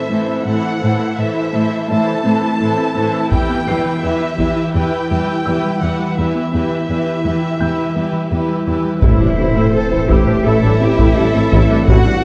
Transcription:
Already playing: E5
0.10 A2 E3 A3 E4 A4 C5
0.28 C4
0.46 A2 E3 A3 E4 A4 C5 F#5
0.64 E4
0.81 A2 E3 E4 A4 C5
0.99 A3
1.17 A2 E3 E4 A4 C5 E5
1.35 A4
1.52 A2 E3 A3 E4 A4 C5
1.71 A4
1.88 A2 E3 A3 E4 A4 C5 E5 A5
2.07 A4
2.23 A2 E3 C4 E4 A4 C5
2.42 A3
2.59 A2 E3 E4 A4 C5
2.78 C4
2.94 A2 E3 A3 E4 A4 C5
3.13 C4
3.30 E2 E3 E4 G4 B4 G5, taiko
3.49 B3
3.64 E2 E3 B3 E4 G4 B4 C7
3.68 B4
3.85 E3
4.01 E2 E3 E4 G4 B4 E5
4.21 E4
4.37 E2 E3 E4 G4 B4, taiko
4.56 E4
4.74 E2 E3 E4 G4 B4 G5
4.92 E4
5.10 E2 E3 G3 E4 G4 B4
5.28 E3
5.45 E2 E3 E4 G4 B4 E5 E6
5.64 G3
5.81 E2 E3 E4 G4 B4 F#5
6.00 G3
6.17 E2 E3 E4 G4 B4 E5
6.35 B3
6.53 E2 E3 B3 E4 G4 B4
6.71 E3
6.88 E2 E3 E4 G4 B4
7.07 E4
7.24 E2 E3 E4 G4 B4
7.42 E4
7.59 E2 E3 E4 G4 B4 G5 G6
7.78 E4
7.96 E2 E3 G3 E4 G4 B4
8.13 E3
8.31 E2 E3 E4 G4 B4
8.49 G3
8.67 E2 E3 E4 G4 B4
8.85 G3
9.02 A1 A2 E3 A3 C4 E4 C5, taiko, impact
9.20 A1 G3 D4 E4
9.38 A1 A3 E4
9.56 A1 A3 E4
9.74 A4
9.92 A1 A3 E4 A4
10.09 A1 A3 E4 G4 E6, taiko
10.27 A1 G3 D4 A4
10.45 A1 A3 E4 A4 E5
10.63 A1 G3 D4 A4
10.80 A1 A3 C4 E4 G4
10.98 A1 A3 E4, taiko
11.17 A1 G3 D4 A4
11.34 A1 A3 C4 E4
11.52 A1 A3 E4, taiko
11.70 A1 G3 C4 D4
11.88 A1 A2 E3 A3 E4 F#4 F#5, taiko
12.06 A1 G3 D4 E4

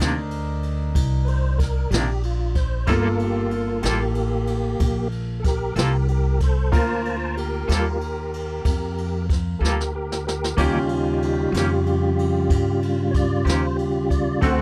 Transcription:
Already playing: D2 D4 D#4 A#4
0.00 C3 D#3 A#3 D4, snare
0.31 ride
0.63 ride
0.95 C2, kick, ride
1.25 B4, ride
1.29 C5
1.58 A#4, kick, ride
1.62 snare
1.91 A#1 D#3 A#3 D4 G4, snare, ride
1.95 C3
2.23 F4, ride
2.55 C5, kick, ride
2.87 G1 G3 A#3 F4 A4 A#4, kick, ride
3.19 G4, ride
3.51 ride
3.56 F4
3.82 A1 A#3 F4 G4 A4, snare, ride
3.86 G3
4.15 ride
4.47 ride
4.80 A#1, kick, ride
5.12 ride
5.40 A4
5.44 G4 A#4, kick, snare, ride
5.76 C2 G3 A#3 F4 G4 A4 A#4, snare, ride
6.08 G4 A#4, ride
6.40 A4 C5, kick, ride
6.72 D2 A#3 F4 A#4 C5 A5, kick, ride
7.05 C5 A5, ride
7.37 G4 A#4, ride
7.68 D#2 G3 A#3 F4 A4, snare, ride
8.01 ride
8.34 ride
8.65 F2, kick, ride
8.98 ride
9.29 kick, snare, ride
9.59 D2 G3 A#3 F4 G4 A4 A#4
9.64 snare
9.80 snare
9.95 G4 A#4
10.12 snare
10.27 G4 A#4, snare
10.44 snare
10.57 D#2 D#3 G3 A#3 C#4 D#4 F4 G4, kick, ride
10.61 C#3 G4
10.89 ride
10.94 D#4 G4
11.22 D#4 G4, ride
11.51 F2 C#4 F#4 G4, ride
11.55 D#3 A#3 G4, snare
11.87 ride
12.19 ride
12.50 G2, kick, ride
12.83 ride
13.11 C#5, kick, ride
13.16 D5
13.45 D#2 D#3 A#3 C#4 G4 C5, ride
13.49 snare
13.76 G4, ride
14.10 D5, kick, ride
14.41 D2 D3 A3 C4 F#4 A4 C5, kick, ride

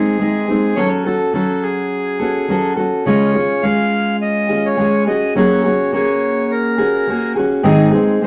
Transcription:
Already playing: G#3 C4 D#4 G#4
0.19 G#3 C4 D#4 G#4
0.48 G#3 C4 D#4 G#4
0.76 F#3 C#4 F#4 A4 C#5
1.05 C#4 F#4 A4
1.34 F#3 C#4 F#4 A4
1.63 G#4
2.19 C#4 F#4 A4
2.48 F#3 C#4 F#4 A4
2.76 C#4 F#4 A4
3.06 C#3 G#3 C#4 F4 G#4 C#5
3.34 C#4 F4 G#4
3.63 G#3 C#4 F4 G#4 F5
4.22 D#5
4.49 C#4 F4 G#4
4.66 C#5
4.77 G#3 C#4 F4 G#4
5.07 C#4 F#4 G#4 D#5
5.35 F#3 A#3 C#4 F#4 G#4 C#5
5.64 C#4 F#4 G#4
5.93 A#3 C#4 F#4 G#4 C#5
6.52 A#4
6.78 C#4 F#4 G#4
7.07 A#3 C#4 F#4 G#4
7.35 C#4 F#4 G#4
7.63 G#2 D#3 G#3 C4 D#4 G#4
7.92 G#3 C4 D#4 G#4
8.22 G#3 C4 C5

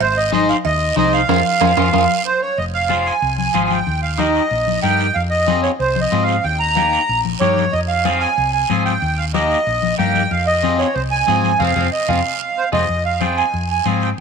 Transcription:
0.00 G#1 C5, cowbell, high conga, long guiro
0.17 D#5
0.32 D#4 G#4 C5 D#5, high conga, short guiro
0.49 F5, short guiro
0.65 D#2 D#5, cowbell, high conga, long guiro
0.96 C2 D#4 G#4 C5 D#5, high conga, short guiro
1.13 F5, short guiro
1.29 F2 F4 G#4 C5, high conga, high timbale, long guiro
1.61 F2 F4 G#4 C5, high conga, high timbale, long guiro
1.77 F2 F4 G#4 C5, high conga, high timbale, long guiro
1.93 F2 F4 G#4 C5, high conga, high timbale, long guiro
2.26 C5
2.42 C#5
2.58 F1 D#5, high conga, long guiro
2.74 F5
2.89 F4 G#4 C5, high conga, short guiro
3.06 G#5, short guiro
3.22 C2, high conga, long guiro
3.38 G#5, high conga
3.54 G#1 F4 G#4 C5, high conga, short guiro
3.64 G#5
3.70 G5, high conga, short guiro
3.87 D#2, high conga, long guiro
4.03 F5
4.18 D#4 G4 A#4 D#5, high conga, short guiro
4.35 short guiro
4.51 A#1, high conga, long guiro
4.67 high conga
4.83 G2 D#4 G4 A#4 G5, high conga, short guiro
5.00 short guiro
5.15 F2 F5, high conga, long guiro
5.30 D#5
5.47 C4 F4 G#4, high conga, short guiro
5.63 C#5, short guiro
5.80 C2 C5, high conga, long guiro
5.96 high conga
6.01 D#5
6.12 G#2 C4 F4 G#4, high conga, short guiro
6.23 F5
6.28 short guiro
6.44 D#2 G5, high conga, long guiro
6.60 A#5
6.76 A#3 D#4 G4, high conga, short guiro
6.93 short guiro
7.09 A#1, high conga, long guiro
7.25 high conga
7.40 G2 A#3 D#4 G4 C#5, high conga, short guiro
7.57 high conga, short guiro
7.73 F2 D#5, high conga, long guiro
7.88 F5
8.05 C4 F4 G#4, high conga, short guiro
8.20 G#5, short guiro
8.38 C2, high conga, long guiro
8.52 G#5
8.70 G#2 C4 F4 G#4, high conga, short guiro
8.85 G5, high conga, short guiro
9.02 D#2, high conga, long guiro
9.17 F5
9.34 A#3 D#4 G4 D#5, high conga, short guiro
9.51 short guiro
9.67 A#1, high conga, long guiro
9.83 high conga
9.98 G2 A#3 D#4 G4 G5, high conga, short guiro
10.15 high conga, short guiro
10.31 F2 F5, high conga, long guiro
10.47 D#5
10.63 C4 F4 G#4, high conga, short guiro
10.78 C#5, short guiro
10.94 C2 C5, high conga, long guiro
11.11 G#5
11.27 G#2 C4 F4 G#4, high conga, short guiro
11.44 high conga, short guiro
11.59 F2 C4 F4 G#4 F5, low conga, long guiro
11.76 F2 C4 F4 G#4, low conga, long guiro
11.92 D#5
12.08 F2 C4 F4 G#4 F5, low conga, long guiro
12.57 C5
12.72 F2 C4 F4 G#4 D#5, low conga, long guiro
12.89 F2, high conga
13.06 F5
13.20 C4 F4 G#4 G5, high conga, short guiro
13.38 G#5, short guiro
13.54 F2, high conga, long guiro
13.70 G#5
13.86 G#2 C4 F4 G#4, high conga, short guiro
14.02 G5, short guiro

